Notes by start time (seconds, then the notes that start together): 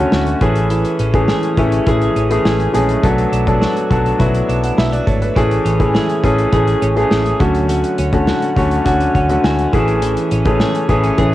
Already playing: D3 A3 C#4 F#4
0.00 F#4
0.12 D2 F#4, snare
0.26 closed hi-hat
0.41 A1 E3 A3 C#4 G#4, kick, closed hi-hat
0.55 closed hi-hat
0.70 E3, closed hi-hat
0.85 closed hi-hat
0.99 A1 C#4, closed hi-hat
1.14 E3 A3 C#4 G#4, kick, closed hi-hat
1.28 G#4, snare
1.43 closed hi-hat
1.57 A1 E3 A3 C#4 E4, kick, closed hi-hat
1.72 closed hi-hat
1.87 A1 E3 A3 C#4 G#4, kick, closed hi-hat
2.02 closed hi-hat
2.16 A1 C#4, closed hi-hat
2.30 E3 A3 C#4 G#4, closed hi-hat
2.45 A1 G#4, snare
2.60 closed hi-hat
2.73 A#1 E3 G#3 A3 C#4 G#4, closed hi-hat
2.89 closed hi-hat
3.03 B1 F#3 A3 B3 D4 A4, kick, closed hi-hat
3.18 closed hi-hat
3.32 B1 D4, closed hi-hat
3.47 F#3 B3 D4 A4, kick, closed hi-hat
3.61 F#4, snare
3.77 closed hi-hat
3.90 B1 F#3 B3 D4 A4, kick, closed hi-hat
4.06 closed hi-hat
4.19 B1 F#3 B3 D4 E4 F#4, kick, closed hi-hat
4.34 closed hi-hat
4.49 B1 D4, closed hi-hat
4.63 F#5, closed hi-hat
4.78 B1 E4 E5, snare
4.92 F#4 D5, closed hi-hat
5.07 G#1 A3 C#5, kick, closed hi-hat
5.22 B4, closed hi-hat
5.36 A1 E3 A3 C#4 G#4, kick, closed hi-hat
5.51 closed hi-hat
5.65 A1 C#4, closed hi-hat
5.79 E3 A3 C#4 G#4, kick, closed hi-hat
5.94 G#4, snare
6.09 closed hi-hat
6.23 A1 E3 A3 C#4 G#4, kick, closed hi-hat
6.38 closed hi-hat
6.52 A1 E3 A3 C#4 G#4, kick, closed hi-hat
6.68 closed hi-hat
6.82 A1 C#4, closed hi-hat
6.96 E3 A3 C#4 G#4, closed hi-hat
7.11 A1 G#4, snare
7.26 closed hi-hat
7.39 D2 D3 F#3 A3 C#4 F#4, kick, closed hi-hat
7.55 closed hi-hat
7.69 F#3, closed hi-hat
7.84 closed hi-hat
7.98 D2 C#4, closed hi-hat
8.13 D3 A3 C#4 F#4, kick, closed hi-hat
8.27 F#4, snare
8.42 closed hi-hat
8.56 D2 D3 A3 C#4 F#4, kick, closed hi-hat
8.71 closed hi-hat
8.85 D2 D3 A3 C#4 F#4, kick, closed hi-hat
9.00 closed hi-hat
9.15 D2 C#4 F#5, kick, closed hi-hat
9.29 D3 A3 C#4 F#4, closed hi-hat
9.44 D2 F#4 G#5, snare
9.59 closed hi-hat
9.73 A1 E3 A3 C#4 G#4, kick, closed hi-hat
9.88 closed hi-hat
10.02 E3, closed hi-hat
10.17 closed hi-hat
10.31 A1 C#4, closed hi-hat
10.45 E3 A3 C#4 G#4, kick, closed hi-hat
10.60 G#4, snare
10.75 closed hi-hat
10.89 A1 E3 A3 B3 C#4 G#4, kick, closed hi-hat
11.04 C#4, closed hi-hat
11.18 A1 E3 A3 C#4 G#4, kick, closed hi-hat